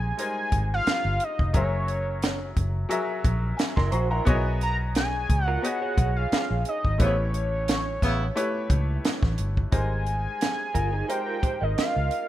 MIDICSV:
0, 0, Header, 1, 8, 480
1, 0, Start_track
1, 0, Tempo, 681818
1, 1091, Time_signature, 4, 2, 24, 8
1, 8647, End_track
2, 0, Start_track
2, 0, Title_t, "Analog synth lead"
2, 0, Program_c, 0, 81
2, 0, Note_on_c, 0, 80, 107
2, 137, Note_off_c, 0, 80, 0
2, 156, Note_on_c, 0, 80, 98
2, 488, Note_off_c, 0, 80, 0
2, 520, Note_on_c, 0, 77, 92
2, 871, Note_on_c, 0, 75, 93
2, 882, Note_off_c, 0, 77, 0
2, 1097, Note_off_c, 0, 75, 0
2, 1101, Note_on_c, 0, 73, 87
2, 1788, Note_off_c, 0, 73, 0
2, 3258, Note_on_c, 0, 82, 105
2, 3357, Note_off_c, 0, 82, 0
2, 3499, Note_on_c, 0, 80, 117
2, 3837, Note_off_c, 0, 80, 0
2, 3837, Note_on_c, 0, 78, 117
2, 3981, Note_off_c, 0, 78, 0
2, 3981, Note_on_c, 0, 78, 99
2, 4335, Note_off_c, 0, 78, 0
2, 4339, Note_on_c, 0, 77, 98
2, 4665, Note_off_c, 0, 77, 0
2, 4707, Note_on_c, 0, 75, 87
2, 4938, Note_on_c, 0, 73, 93
2, 4949, Note_off_c, 0, 75, 0
2, 6373, Note_off_c, 0, 73, 0
2, 6846, Note_on_c, 0, 80, 114
2, 7821, Note_on_c, 0, 79, 104
2, 7831, Note_off_c, 0, 80, 0
2, 8187, Note_on_c, 0, 75, 88
2, 8197, Note_off_c, 0, 79, 0
2, 8286, Note_off_c, 0, 75, 0
2, 8291, Note_on_c, 0, 77, 99
2, 8647, Note_off_c, 0, 77, 0
2, 8647, End_track
3, 0, Start_track
3, 0, Title_t, "Clean electric guitar"
3, 0, Program_c, 1, 27
3, 2655, Note_on_c, 1, 70, 67
3, 2658, Note_on_c, 1, 64, 64
3, 2757, Note_off_c, 1, 70, 0
3, 2760, Note_on_c, 1, 72, 69
3, 2764, Note_off_c, 1, 64, 0
3, 2768, Note_on_c, 1, 66, 66
3, 2888, Note_off_c, 1, 72, 0
3, 2892, Note_off_c, 1, 66, 0
3, 2894, Note_on_c, 1, 70, 70
3, 2898, Note_on_c, 1, 64, 61
3, 3125, Note_off_c, 1, 70, 0
3, 3127, Note_off_c, 1, 64, 0
3, 3855, Note_on_c, 1, 65, 61
3, 3855, Note_on_c, 1, 70, 59
3, 3961, Note_off_c, 1, 70, 0
3, 3963, Note_off_c, 1, 65, 0
3, 3967, Note_on_c, 1, 71, 71
3, 3972, Note_on_c, 1, 66, 63
3, 4092, Note_off_c, 1, 71, 0
3, 4093, Note_off_c, 1, 66, 0
3, 4096, Note_on_c, 1, 68, 58
3, 4098, Note_on_c, 1, 73, 66
3, 4789, Note_off_c, 1, 73, 0
3, 4790, Note_off_c, 1, 68, 0
3, 7564, Note_on_c, 1, 70, 62
3, 7567, Note_on_c, 1, 65, 55
3, 7689, Note_off_c, 1, 65, 0
3, 7689, Note_off_c, 1, 70, 0
3, 7692, Note_on_c, 1, 68, 65
3, 7695, Note_on_c, 1, 63, 62
3, 7799, Note_off_c, 1, 68, 0
3, 7801, Note_off_c, 1, 63, 0
3, 7802, Note_on_c, 1, 67, 59
3, 7805, Note_on_c, 1, 72, 64
3, 7924, Note_off_c, 1, 72, 0
3, 7926, Note_on_c, 1, 70, 66
3, 7928, Note_off_c, 1, 67, 0
3, 7935, Note_on_c, 1, 65, 58
3, 8035, Note_off_c, 1, 70, 0
3, 8038, Note_on_c, 1, 72, 64
3, 8041, Note_off_c, 1, 65, 0
3, 8045, Note_on_c, 1, 67, 56
3, 8166, Note_off_c, 1, 72, 0
3, 8169, Note_off_c, 1, 67, 0
3, 8173, Note_on_c, 1, 70, 54
3, 8174, Note_on_c, 1, 75, 51
3, 8647, Note_off_c, 1, 70, 0
3, 8647, Note_off_c, 1, 75, 0
3, 8647, End_track
4, 0, Start_track
4, 0, Title_t, "Grand piano"
4, 0, Program_c, 2, 0
4, 0, Control_c, 2, 64, 127
4, 0, Note_on_c, 2, 56, 88
4, 0, Note_on_c, 2, 63, 70
4, 0, Note_on_c, 2, 67, 74
4, 0, Note_on_c, 2, 70, 72
4, 0, Note_on_c, 2, 72, 84
4, 122, Note_off_c, 2, 56, 0
4, 122, Note_on_c, 2, 56, 66
4, 125, Note_off_c, 2, 63, 0
4, 125, Note_on_c, 2, 63, 64
4, 129, Note_on_c, 2, 55, 63
4, 131, Note_off_c, 2, 70, 0
4, 131, Note_on_c, 2, 70, 60
4, 135, Note_off_c, 2, 72, 0
4, 135, Note_on_c, 2, 72, 69
4, 760, Note_off_c, 2, 56, 0
4, 761, Note_off_c, 2, 63, 0
4, 763, Note_off_c, 2, 55, 0
4, 764, Note_off_c, 2, 70, 0
4, 766, Note_off_c, 2, 72, 0
4, 1078, Note_on_c, 2, 54, 73
4, 1082, Note_on_c, 2, 66, 65
4, 1085, Note_on_c, 2, 68, 65
4, 1085, Note_on_c, 2, 70, 69
4, 1090, Note_on_c, 2, 76, 79
4, 1100, Control_c, 2, 64, 0
4, 1105, Note_off_c, 2, 67, 0
4, 1214, Control_c, 2, 64, 127
4, 1718, Note_off_c, 2, 54, 0
4, 1720, Note_off_c, 2, 66, 0
4, 1721, Note_off_c, 2, 68, 0
4, 1721, Note_off_c, 2, 70, 0
4, 1724, Note_off_c, 2, 76, 0
4, 2032, Note_on_c, 2, 54, 89
4, 2035, Note_on_c, 2, 66, 81
4, 2038, Note_on_c, 2, 68, 82
4, 2043, Note_on_c, 2, 70, 74
4, 2044, Note_on_c, 2, 76, 94
4, 2508, Note_off_c, 2, 76, 0
4, 2513, Note_on_c, 2, 80, 61
4, 2519, Note_on_c, 2, 76, 53
4, 2640, Note_off_c, 2, 80, 0
4, 2647, Note_off_c, 2, 76, 0
4, 2649, Note_on_c, 2, 84, 74
4, 2651, Note_on_c, 2, 80, 55
4, 2675, Note_off_c, 2, 54, 0
4, 2676, Note_off_c, 2, 66, 0
4, 2677, Note_off_c, 2, 68, 0
4, 2680, Note_off_c, 2, 70, 0
4, 2758, Note_on_c, 2, 85, 62
4, 2759, Note_off_c, 2, 84, 0
4, 2760, Note_off_c, 2, 80, 0
4, 2765, Note_on_c, 2, 82, 56
4, 2880, Note_off_c, 2, 82, 0
4, 2887, Note_off_c, 2, 85, 0
4, 2891, Note_on_c, 2, 82, 67
4, 2892, Note_on_c, 2, 78, 52
4, 2993, Note_on_c, 2, 59, 90
4, 3000, Note_on_c, 2, 66, 82
4, 3002, Note_on_c, 2, 68, 85
4, 3005, Note_on_c, 2, 73, 85
4, 3008, Note_on_c, 2, 75, 91
4, 3019, Control_c, 2, 64, 0
4, 3123, Note_off_c, 2, 82, 0
4, 3124, Note_off_c, 2, 78, 0
4, 3130, Control_c, 2, 64, 127
4, 3635, Note_off_c, 2, 59, 0
4, 3638, Note_off_c, 2, 66, 0
4, 3639, Note_off_c, 2, 68, 0
4, 3641, Note_off_c, 2, 73, 0
4, 3642, Note_off_c, 2, 75, 0
4, 3957, Note_on_c, 2, 59, 72
4, 3959, Note_on_c, 2, 66, 63
4, 3963, Note_on_c, 2, 68, 65
4, 3964, Note_on_c, 2, 73, 60
4, 3970, Note_on_c, 2, 75, 76
4, 4597, Note_off_c, 2, 59, 0
4, 4598, Note_off_c, 2, 66, 0
4, 4600, Note_off_c, 2, 68, 0
4, 4600, Note_off_c, 2, 73, 0
4, 4603, Note_off_c, 2, 75, 0
4, 4913, Note_on_c, 2, 57, 74
4, 4919, Note_on_c, 2, 64, 66
4, 4923, Note_on_c, 2, 67, 63
4, 4924, Note_on_c, 2, 71, 61
4, 4924, Note_on_c, 2, 72, 64
4, 4939, Control_c, 2, 64, 0
4, 4973, Note_on_c, 2, 73, 79
4, 4976, Note_off_c, 2, 72, 0
4, 5058, Control_c, 2, 64, 127
4, 5554, Note_off_c, 2, 57, 0
4, 5557, Note_off_c, 2, 64, 0
4, 5559, Note_off_c, 2, 67, 0
4, 5560, Note_off_c, 2, 71, 0
4, 5584, Note_off_c, 2, 73, 0
4, 5882, Note_on_c, 2, 57, 90
4, 5882, Note_on_c, 2, 64, 76
4, 5884, Note_on_c, 2, 67, 75
4, 5887, Note_on_c, 2, 71, 74
4, 5890, Note_on_c, 2, 73, 92
4, 6518, Note_off_c, 2, 57, 0
4, 6518, Note_off_c, 2, 64, 0
4, 6519, Note_off_c, 2, 67, 0
4, 6521, Note_off_c, 2, 71, 0
4, 6522, Note_off_c, 2, 73, 0
4, 6839, Note_on_c, 2, 56, 66
4, 6842, Note_on_c, 2, 63, 63
4, 6846, Note_on_c, 2, 55, 60
4, 6847, Note_on_c, 2, 70, 65
4, 6850, Note_on_c, 2, 72, 81
4, 6857, Control_c, 2, 64, 0
4, 6963, Control_c, 2, 64, 127
4, 7476, Note_off_c, 2, 56, 0
4, 7478, Note_off_c, 2, 63, 0
4, 7480, Note_off_c, 2, 55, 0
4, 7480, Note_off_c, 2, 70, 0
4, 7482, Note_off_c, 2, 72, 0
4, 7803, Note_on_c, 2, 56, 60
4, 7805, Note_on_c, 2, 63, 60
4, 7807, Note_on_c, 2, 67, 58
4, 7810, Note_on_c, 2, 70, 65
4, 7812, Note_on_c, 2, 72, 73
4, 8438, Note_off_c, 2, 56, 0
4, 8439, Note_off_c, 2, 63, 0
4, 8440, Note_off_c, 2, 67, 0
4, 8442, Note_off_c, 2, 70, 0
4, 8442, Note_off_c, 2, 72, 0
4, 8647, End_track
5, 0, Start_track
5, 0, Title_t, "Horn section"
5, 0, Program_c, 3, 61
5, 4926, Note_on_c, 3, 64, 73
5, 4927, Note_on_c, 3, 59, 69
5, 4928, Note_on_c, 3, 49, 70
5, 5038, Note_off_c, 3, 59, 0
5, 5038, Note_off_c, 3, 64, 0
5, 5039, Note_off_c, 3, 49, 0
5, 5644, Note_on_c, 3, 49, 84
5, 5644, Note_on_c, 3, 59, 81
5, 5644, Note_on_c, 3, 64, 93
5, 5799, Note_off_c, 3, 49, 0
5, 5799, Note_off_c, 3, 59, 0
5, 5799, Note_off_c, 3, 64, 0
5, 8647, End_track
6, 0, Start_track
6, 0, Title_t, "Fingered electric bass"
6, 0, Program_c, 4, 33
6, 0, Note_on_c, 4, 34, 77
6, 80, Note_off_c, 4, 34, 0
6, 369, Note_on_c, 4, 32, 82
6, 557, Note_off_c, 4, 32, 0
6, 738, Note_on_c, 4, 31, 85
6, 825, Note_off_c, 4, 31, 0
6, 984, Note_on_c, 4, 29, 73
6, 1090, Note_off_c, 4, 29, 0
6, 1090, Note_on_c, 4, 30, 107
6, 1782, Note_off_c, 4, 30, 0
6, 1809, Note_on_c, 4, 30, 80
6, 1997, Note_off_c, 4, 30, 0
6, 2287, Note_on_c, 4, 34, 88
6, 2476, Note_off_c, 4, 34, 0
6, 2655, Note_on_c, 4, 30, 78
6, 2743, Note_off_c, 4, 30, 0
6, 2762, Note_on_c, 4, 34, 87
6, 2953, Note_off_c, 4, 34, 0
6, 3007, Note_on_c, 4, 35, 107
6, 3700, Note_off_c, 4, 35, 0
6, 3731, Note_on_c, 4, 37, 80
6, 3918, Note_off_c, 4, 37, 0
6, 4209, Note_on_c, 4, 35, 82
6, 4397, Note_off_c, 4, 35, 0
6, 4580, Note_on_c, 4, 34, 76
6, 4666, Note_off_c, 4, 34, 0
6, 4821, Note_on_c, 4, 32, 82
6, 4906, Note_off_c, 4, 32, 0
6, 4928, Note_on_c, 4, 33, 103
6, 5620, Note_off_c, 4, 33, 0
6, 5651, Note_on_c, 4, 33, 71
6, 5838, Note_off_c, 4, 33, 0
6, 6128, Note_on_c, 4, 37, 87
6, 6316, Note_off_c, 4, 37, 0
6, 6496, Note_on_c, 4, 33, 84
6, 6583, Note_off_c, 4, 33, 0
6, 6610, Note_on_c, 4, 31, 88
6, 6797, Note_off_c, 4, 31, 0
6, 6847, Note_on_c, 4, 32, 105
6, 7222, Note_off_c, 4, 32, 0
6, 7571, Note_on_c, 4, 31, 74
6, 7757, Note_off_c, 4, 31, 0
6, 8180, Note_on_c, 4, 32, 85
6, 8265, Note_off_c, 4, 32, 0
6, 8423, Note_on_c, 4, 37, 73
6, 8507, Note_off_c, 4, 37, 0
6, 8647, End_track
7, 0, Start_track
7, 0, Title_t, "Muted fingered electric bass strokes"
7, 612, Note_on_c, 9, 29, 46
7, 682, Note_off_c, 9, 29, 0
7, 4450, Note_on_c, 9, 29, 47
7, 4521, Note_off_c, 9, 29, 0
7, 8050, Note_on_c, 9, 29, 39
7, 8120, Note_off_c, 9, 29, 0
7, 8647, End_track
8, 0, Start_track
8, 0, Title_t, "Drums"
8, 131, Note_on_c, 9, 42, 91
8, 202, Note_off_c, 9, 42, 0
8, 367, Note_on_c, 9, 36, 90
8, 367, Note_on_c, 9, 42, 76
8, 437, Note_off_c, 9, 42, 0
8, 438, Note_off_c, 9, 36, 0
8, 611, Note_on_c, 9, 42, 76
8, 615, Note_on_c, 9, 38, 101
8, 681, Note_off_c, 9, 42, 0
8, 686, Note_off_c, 9, 38, 0
8, 845, Note_on_c, 9, 42, 72
8, 915, Note_off_c, 9, 42, 0
8, 980, Note_on_c, 9, 36, 91
8, 1051, Note_off_c, 9, 36, 0
8, 1084, Note_on_c, 9, 42, 72
8, 1087, Note_on_c, 9, 36, 108
8, 1154, Note_off_c, 9, 42, 0
8, 1158, Note_off_c, 9, 36, 0
8, 1326, Note_on_c, 9, 42, 53
8, 1396, Note_off_c, 9, 42, 0
8, 1566, Note_on_c, 9, 42, 87
8, 1574, Note_on_c, 9, 38, 116
8, 1636, Note_off_c, 9, 42, 0
8, 1645, Note_off_c, 9, 38, 0
8, 1807, Note_on_c, 9, 36, 81
8, 1807, Note_on_c, 9, 42, 60
8, 1877, Note_off_c, 9, 36, 0
8, 1877, Note_off_c, 9, 42, 0
8, 2047, Note_on_c, 9, 42, 95
8, 2117, Note_off_c, 9, 42, 0
8, 2285, Note_on_c, 9, 36, 99
8, 2285, Note_on_c, 9, 42, 75
8, 2355, Note_off_c, 9, 36, 0
8, 2355, Note_off_c, 9, 42, 0
8, 2528, Note_on_c, 9, 42, 77
8, 2532, Note_on_c, 9, 38, 104
8, 2598, Note_off_c, 9, 42, 0
8, 2603, Note_off_c, 9, 38, 0
8, 2655, Note_on_c, 9, 36, 99
8, 2661, Note_on_c, 9, 38, 33
8, 2726, Note_off_c, 9, 36, 0
8, 2732, Note_off_c, 9, 38, 0
8, 2760, Note_on_c, 9, 42, 73
8, 2830, Note_off_c, 9, 42, 0
8, 3003, Note_on_c, 9, 42, 79
8, 3006, Note_on_c, 9, 36, 107
8, 3074, Note_off_c, 9, 42, 0
8, 3076, Note_off_c, 9, 36, 0
8, 3247, Note_on_c, 9, 42, 53
8, 3318, Note_off_c, 9, 42, 0
8, 3486, Note_on_c, 9, 42, 95
8, 3495, Note_on_c, 9, 38, 110
8, 3556, Note_off_c, 9, 42, 0
8, 3565, Note_off_c, 9, 38, 0
8, 3728, Note_on_c, 9, 36, 84
8, 3729, Note_on_c, 9, 42, 66
8, 3799, Note_off_c, 9, 36, 0
8, 3800, Note_off_c, 9, 42, 0
8, 3975, Note_on_c, 9, 42, 86
8, 4045, Note_off_c, 9, 42, 0
8, 4207, Note_on_c, 9, 36, 102
8, 4208, Note_on_c, 9, 42, 73
8, 4277, Note_off_c, 9, 36, 0
8, 4278, Note_off_c, 9, 42, 0
8, 4451, Note_on_c, 9, 42, 80
8, 4456, Note_on_c, 9, 38, 110
8, 4522, Note_off_c, 9, 42, 0
8, 4526, Note_off_c, 9, 38, 0
8, 4683, Note_on_c, 9, 42, 71
8, 4753, Note_off_c, 9, 42, 0
8, 4819, Note_on_c, 9, 36, 82
8, 4890, Note_off_c, 9, 36, 0
8, 4926, Note_on_c, 9, 42, 80
8, 4928, Note_on_c, 9, 36, 108
8, 4996, Note_off_c, 9, 42, 0
8, 4998, Note_off_c, 9, 36, 0
8, 5168, Note_on_c, 9, 42, 53
8, 5239, Note_off_c, 9, 42, 0
8, 5408, Note_on_c, 9, 42, 99
8, 5416, Note_on_c, 9, 38, 124
8, 5478, Note_off_c, 9, 42, 0
8, 5487, Note_off_c, 9, 38, 0
8, 5648, Note_on_c, 9, 36, 85
8, 5652, Note_on_c, 9, 42, 63
8, 5719, Note_off_c, 9, 36, 0
8, 5722, Note_off_c, 9, 42, 0
8, 5891, Note_on_c, 9, 42, 93
8, 5962, Note_off_c, 9, 42, 0
8, 6124, Note_on_c, 9, 36, 102
8, 6124, Note_on_c, 9, 42, 72
8, 6195, Note_off_c, 9, 36, 0
8, 6195, Note_off_c, 9, 42, 0
8, 6369, Note_on_c, 9, 42, 83
8, 6374, Note_on_c, 9, 38, 106
8, 6439, Note_off_c, 9, 42, 0
8, 6444, Note_off_c, 9, 38, 0
8, 6495, Note_on_c, 9, 36, 98
8, 6500, Note_on_c, 9, 38, 36
8, 6565, Note_off_c, 9, 36, 0
8, 6570, Note_off_c, 9, 38, 0
8, 6603, Note_on_c, 9, 42, 72
8, 6673, Note_off_c, 9, 42, 0
8, 6739, Note_on_c, 9, 36, 80
8, 6809, Note_off_c, 9, 36, 0
8, 6845, Note_on_c, 9, 42, 73
8, 6846, Note_on_c, 9, 36, 116
8, 6916, Note_off_c, 9, 42, 0
8, 6917, Note_off_c, 9, 36, 0
8, 7086, Note_on_c, 9, 42, 48
8, 7156, Note_off_c, 9, 42, 0
8, 7330, Note_on_c, 9, 42, 90
8, 7339, Note_on_c, 9, 38, 118
8, 7401, Note_off_c, 9, 42, 0
8, 7409, Note_off_c, 9, 38, 0
8, 7568, Note_on_c, 9, 36, 72
8, 7570, Note_on_c, 9, 42, 64
8, 7638, Note_off_c, 9, 36, 0
8, 7640, Note_off_c, 9, 42, 0
8, 7812, Note_on_c, 9, 42, 89
8, 7882, Note_off_c, 9, 42, 0
8, 8047, Note_on_c, 9, 36, 96
8, 8049, Note_on_c, 9, 42, 73
8, 8117, Note_off_c, 9, 36, 0
8, 8119, Note_off_c, 9, 42, 0
8, 8293, Note_on_c, 9, 42, 80
8, 8297, Note_on_c, 9, 38, 110
8, 8363, Note_off_c, 9, 42, 0
8, 8368, Note_off_c, 9, 38, 0
8, 8525, Note_on_c, 9, 42, 70
8, 8595, Note_off_c, 9, 42, 0
8, 8647, End_track
0, 0, End_of_file